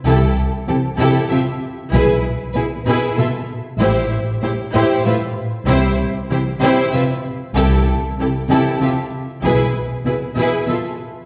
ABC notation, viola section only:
X:1
M:3/4
L:1/8
Q:1/4=96
K:Am
V:1 name="Viola section"
E z E E e z | E z E E e z | E z E E e z | E z E E e z |
E z E E e z | E z E E e z |]